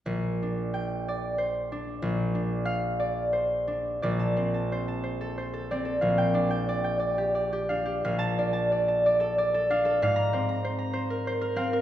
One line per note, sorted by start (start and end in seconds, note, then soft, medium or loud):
0.06 2.01 A#1 medium
0.43 1.71 D4 soft
0.74 2.04 G5 medium
1.08 2.98 D5 soft
1.38 3.32 C5 soft
1.72 2.33 D4 medium
2.02 4.02 A#1 medium
2.35 3.66 D4 soft
2.65 6.00 F5 medium
3.00 4.01 D5 medium
3.33 4.35 C5 soft
3.68 6.33 D4 soft
4.02 6.01 A#1 medium
4.02 5.70 D5 medium
4.19 4.53 A5 medium
4.36 5.70 C4 soft
4.36 4.71 C5 soft
4.54 4.87 A5 soft
4.72 5.02 C5 soft
4.88 6.08 A5 soft
5.04 5.36 C5 soft
5.21 5.52 A4 soft
5.38 6.07 C5 soft
5.53 5.84 A4 soft
5.71 6.08 C4 soft
5.71 6.33 D5 medium
5.85 6.06 A4 soft
6.01 8.03 A#1 medium
6.01 7.68 F5 soft
6.18 6.49 G5 medium
6.34 7.69 D4 soft
6.34 6.67 D5 soft
6.51 6.83 G5 soft
6.69 6.98 D5 soft
6.84 8.04 G5 soft
7.00 7.33 D5 soft
7.18 7.51 G4 soft
7.35 8.37 D5 soft
7.53 7.84 G4 soft
7.69 8.38 D4 soft
7.69 8.03 F5 medium
7.86 8.06 G4 medium
8.04 10.03 A#1 medium
8.04 9.69 F5 medium
8.19 8.52 A5 medium
8.38 9.69 D4 soft
8.38 8.70 D5 soft
8.53 8.87 A5 medium
8.72 9.05 D5 medium
8.88 10.03 A5 soft
9.06 9.37 D5 medium
9.20 9.53 A4 medium
9.38 10.04 D5 medium
9.54 9.84 A4 medium
9.70 10.04 D4 medium
9.70 10.01 F5 medium
9.85 10.03 A4 medium
10.02 11.81 G#2 medium
10.02 11.55 F5 medium
10.16 10.48 A#5 medium
10.33 11.55 C4 medium
10.33 10.63 C5 medium
10.49 10.77 A#5 medium
10.64 10.92 C5 medium
10.79 11.81 A#5 medium
10.93 11.26 C5 medium
11.10 11.40 A#4 medium
11.27 11.81 C5 medium
11.41 11.72 A#4 medium
11.56 11.81 C4 medium
11.56 11.81 F5 medium
11.73 11.81 A#4 medium